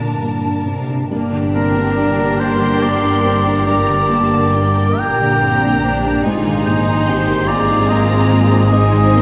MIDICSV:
0, 0, Header, 1, 9, 480
1, 0, Start_track
1, 0, Key_signature, -2, "minor"
1, 0, Tempo, 900901
1, 593, Tempo, 847458
1, 594, Time_signature, 6, 3, 24, 8
1, 2033, Tempo, 878477
1, 2993, Tempo, 833333
1, 5186, End_track
2, 0, Start_track
2, 0, Title_t, "Violin section"
2, 0, Program_c, 0, 48
2, 1320, Note_on_c, 0, 84, 50
2, 2012, Note_off_c, 0, 84, 0
2, 2036, Note_on_c, 0, 82, 38
2, 2272, Note_on_c, 0, 81, 42
2, 2273, Note_off_c, 0, 82, 0
2, 2512, Note_on_c, 0, 79, 43
2, 2518, Note_off_c, 0, 81, 0
2, 2757, Note_off_c, 0, 79, 0
2, 2764, Note_on_c, 0, 82, 47
2, 3475, Note_on_c, 0, 80, 40
2, 3476, Note_off_c, 0, 82, 0
2, 3701, Note_on_c, 0, 82, 41
2, 3707, Note_off_c, 0, 80, 0
2, 3942, Note_off_c, 0, 82, 0
2, 3942, Note_on_c, 0, 84, 46
2, 4171, Note_on_c, 0, 82, 49
2, 4180, Note_off_c, 0, 84, 0
2, 4898, Note_off_c, 0, 82, 0
2, 4900, Note_on_c, 0, 80, 47
2, 5144, Note_off_c, 0, 80, 0
2, 5158, Note_on_c, 0, 84, 47
2, 5186, Note_off_c, 0, 84, 0
2, 5186, End_track
3, 0, Start_track
3, 0, Title_t, "Oboe"
3, 0, Program_c, 1, 68
3, 839, Note_on_c, 1, 70, 48
3, 1323, Note_on_c, 1, 72, 50
3, 1332, Note_off_c, 1, 70, 0
3, 1562, Note_on_c, 1, 74, 55
3, 1570, Note_off_c, 1, 72, 0
3, 2034, Note_off_c, 1, 74, 0
3, 2037, Note_on_c, 1, 74, 56
3, 2763, Note_on_c, 1, 79, 58
3, 2771, Note_off_c, 1, 74, 0
3, 3475, Note_off_c, 1, 79, 0
3, 3708, Note_on_c, 1, 72, 53
3, 4181, Note_on_c, 1, 74, 59
3, 4190, Note_off_c, 1, 72, 0
3, 4421, Note_on_c, 1, 75, 54
3, 4429, Note_off_c, 1, 74, 0
3, 4897, Note_off_c, 1, 75, 0
3, 4901, Note_on_c, 1, 75, 65
3, 5186, Note_off_c, 1, 75, 0
3, 5186, End_track
4, 0, Start_track
4, 0, Title_t, "Violin section"
4, 0, Program_c, 2, 48
4, 0, Note_on_c, 2, 70, 34
4, 0, Note_on_c, 2, 81, 36
4, 461, Note_off_c, 2, 70, 0
4, 462, Note_off_c, 2, 81, 0
4, 586, Note_on_c, 2, 70, 35
4, 587, Note_on_c, 2, 67, 39
4, 2734, Note_off_c, 2, 70, 0
4, 2751, Note_off_c, 2, 67, 0
4, 2758, Note_on_c, 2, 67, 41
4, 3458, Note_off_c, 2, 67, 0
4, 3469, Note_on_c, 2, 65, 42
4, 3470, Note_on_c, 2, 68, 40
4, 3709, Note_off_c, 2, 65, 0
4, 3711, Note_on_c, 2, 63, 46
4, 3948, Note_off_c, 2, 63, 0
4, 3951, Note_on_c, 2, 67, 43
4, 4179, Note_off_c, 2, 68, 0
4, 4185, Note_off_c, 2, 67, 0
4, 4186, Note_on_c, 2, 68, 39
4, 4189, Note_on_c, 2, 65, 42
4, 4891, Note_off_c, 2, 68, 0
4, 4907, Note_off_c, 2, 65, 0
4, 4909, Note_on_c, 2, 63, 41
4, 4909, Note_on_c, 2, 72, 43
4, 5186, Note_off_c, 2, 63, 0
4, 5186, Note_off_c, 2, 72, 0
4, 5186, End_track
5, 0, Start_track
5, 0, Title_t, "Viola section"
5, 0, Program_c, 3, 48
5, 596, Note_on_c, 3, 62, 42
5, 598, Note_on_c, 3, 58, 38
5, 820, Note_off_c, 3, 58, 0
5, 843, Note_on_c, 3, 60, 34
5, 1079, Note_off_c, 3, 60, 0
5, 1079, Note_on_c, 3, 58, 38
5, 2012, Note_off_c, 3, 62, 0
5, 2029, Note_off_c, 3, 58, 0
5, 2036, Note_on_c, 3, 58, 39
5, 2747, Note_off_c, 3, 58, 0
5, 2765, Note_on_c, 3, 58, 42
5, 2991, Note_off_c, 3, 58, 0
5, 3001, Note_on_c, 3, 60, 43
5, 3235, Note_on_c, 3, 62, 43
5, 3238, Note_off_c, 3, 60, 0
5, 3468, Note_on_c, 3, 63, 44
5, 3469, Note_off_c, 3, 62, 0
5, 4180, Note_off_c, 3, 63, 0
5, 4182, Note_on_c, 3, 60, 42
5, 4186, Note_on_c, 3, 56, 41
5, 4891, Note_off_c, 3, 56, 0
5, 4903, Note_off_c, 3, 60, 0
5, 4908, Note_on_c, 3, 56, 50
5, 4910, Note_on_c, 3, 60, 47
5, 5149, Note_off_c, 3, 56, 0
5, 5155, Note_on_c, 3, 58, 46
5, 5186, Note_off_c, 3, 58, 0
5, 5186, Note_off_c, 3, 60, 0
5, 5186, End_track
6, 0, Start_track
6, 0, Title_t, "Felt piano"
6, 0, Program_c, 4, 0
6, 0, Control_c, 4, 64, 127
6, 0, Note_on_c, 4, 43, 31
6, 0, Note_on_c, 4, 50, 23
6, 0, Note_on_c, 4, 58, 24
6, 0, Note_on_c, 4, 62, 25
6, 0, Note_on_c, 4, 70, 24
6, 68, Note_off_c, 4, 58, 0
6, 119, Note_on_c, 4, 58, 23
6, 190, Note_off_c, 4, 50, 0
6, 240, Note_off_c, 4, 62, 0
6, 240, Note_on_c, 4, 62, 23
6, 312, Note_off_c, 4, 58, 0
6, 358, Note_on_c, 4, 60, 20
6, 432, Note_off_c, 4, 62, 0
6, 477, Note_on_c, 4, 62, 21
6, 478, Note_off_c, 4, 60, 0
6, 575, Note_off_c, 4, 43, 0
6, 592, Note_on_c, 4, 43, 40
6, 593, Note_off_c, 4, 62, 0
6, 603, Control_c, 4, 64, 0
6, 609, Note_off_c, 4, 70, 0
6, 697, Control_c, 4, 64, 127
6, 714, Note_on_c, 4, 50, 28
6, 840, Note_on_c, 4, 58, 31
6, 906, Note_off_c, 4, 50, 0
6, 959, Note_on_c, 4, 50, 29
6, 1030, Note_off_c, 4, 58, 0
6, 1083, Note_on_c, 4, 62, 31
6, 1150, Note_off_c, 4, 50, 0
6, 1201, Note_on_c, 4, 70, 30
6, 1272, Note_off_c, 4, 62, 0
6, 1319, Note_on_c, 4, 58, 28
6, 1391, Note_off_c, 4, 70, 0
6, 1442, Note_on_c, 4, 50, 27
6, 1510, Note_off_c, 4, 58, 0
6, 1565, Note_on_c, 4, 58, 27
6, 1630, Note_off_c, 4, 50, 0
6, 1676, Note_on_c, 4, 62, 29
6, 1751, Note_off_c, 4, 58, 0
6, 1799, Note_on_c, 4, 60, 27
6, 1866, Note_off_c, 4, 62, 0
6, 1916, Note_off_c, 4, 60, 0
6, 1923, Note_on_c, 4, 62, 29
6, 2010, Note_off_c, 4, 43, 0
6, 2036, Note_on_c, 4, 43, 38
6, 2042, Control_c, 4, 64, 0
6, 2108, Note_off_c, 4, 62, 0
6, 2133, Control_c, 4, 64, 127
6, 2164, Note_on_c, 4, 50, 29
6, 2273, Note_on_c, 4, 58, 29
6, 2351, Note_off_c, 4, 50, 0
6, 2401, Note_on_c, 4, 50, 30
6, 2469, Note_off_c, 4, 58, 0
6, 2518, Note_on_c, 4, 62, 29
6, 2595, Note_off_c, 4, 50, 0
6, 2641, Note_on_c, 4, 70, 31
6, 2713, Note_off_c, 4, 62, 0
6, 2764, Note_on_c, 4, 58, 28
6, 2831, Note_off_c, 4, 70, 0
6, 2886, Note_on_c, 4, 50, 31
6, 2949, Note_off_c, 4, 58, 0
6, 3004, Note_on_c, 4, 58, 31
6, 3070, Note_off_c, 4, 50, 0
6, 3124, Note_on_c, 4, 62, 30
6, 3191, Note_off_c, 4, 58, 0
6, 3240, Note_on_c, 4, 60, 27
6, 3312, Note_off_c, 4, 62, 0
6, 3357, Note_off_c, 4, 60, 0
6, 3360, Note_on_c, 4, 62, 31
6, 3452, Note_off_c, 4, 43, 0
6, 3477, Note_off_c, 4, 62, 0
6, 3481, Note_on_c, 4, 44, 42
6, 3483, Control_c, 4, 64, 0
6, 3573, Control_c, 4, 64, 127
6, 3600, Note_on_c, 4, 51, 30
6, 3720, Note_on_c, 4, 58, 31
6, 3786, Note_off_c, 4, 51, 0
6, 3834, Note_on_c, 4, 51, 32
6, 3905, Note_off_c, 4, 58, 0
6, 3954, Note_on_c, 4, 60, 34
6, 4021, Note_off_c, 4, 51, 0
6, 4070, Note_on_c, 4, 70, 35
6, 4139, Note_off_c, 4, 60, 0
6, 4191, Note_on_c, 4, 58, 35
6, 4256, Note_off_c, 4, 70, 0
6, 4310, Note_on_c, 4, 51, 31
6, 4376, Note_off_c, 4, 58, 0
6, 4421, Note_on_c, 4, 58, 34
6, 4497, Note_off_c, 4, 51, 0
6, 4538, Note_on_c, 4, 60, 33
6, 4613, Note_off_c, 4, 58, 0
6, 4659, Note_on_c, 4, 58, 30
6, 4733, Note_off_c, 4, 60, 0
6, 4780, Note_on_c, 4, 60, 31
6, 4781, Note_off_c, 4, 58, 0
6, 4884, Note_off_c, 4, 44, 0
6, 4900, Note_on_c, 4, 44, 45
6, 4914, Control_c, 4, 64, 0
6, 4976, Note_off_c, 4, 60, 0
6, 5000, Control_c, 4, 64, 127
6, 5017, Note_on_c, 4, 51, 35
6, 5143, Note_on_c, 4, 58, 35
6, 5186, Note_off_c, 4, 44, 0
6, 5186, Note_off_c, 4, 51, 0
6, 5186, Note_off_c, 4, 58, 0
6, 5186, End_track
7, 0, Start_track
7, 0, Title_t, "Cello section"
7, 0, Program_c, 5, 48
7, 0, Note_on_c, 5, 46, 37
7, 98, Note_off_c, 5, 46, 0
7, 117, Note_on_c, 5, 43, 31
7, 360, Note_off_c, 5, 43, 0
7, 360, Note_on_c, 5, 48, 32
7, 594, Note_off_c, 5, 48, 0
7, 597, Note_on_c, 5, 43, 42
7, 2740, Note_off_c, 5, 43, 0
7, 2754, Note_on_c, 5, 46, 42
7, 3471, Note_off_c, 5, 46, 0
7, 3472, Note_on_c, 5, 44, 46
7, 5186, Note_off_c, 5, 44, 0
7, 5186, End_track
8, 0, Start_track
8, 0, Title_t, "Double bass section"
8, 0, Program_c, 6, 48
8, 599, Note_on_c, 6, 31, 43
8, 2741, Note_off_c, 6, 31, 0
8, 2761, Note_on_c, 6, 34, 39
8, 3473, Note_on_c, 6, 32, 45
8, 3474, Note_off_c, 6, 34, 0
8, 5186, Note_off_c, 6, 32, 0
8, 5186, End_track
9, 0, Start_track
9, 0, Title_t, "Drums"
9, 595, Note_on_c, 9, 81, 28
9, 652, Note_off_c, 9, 81, 0
9, 5186, End_track
0, 0, End_of_file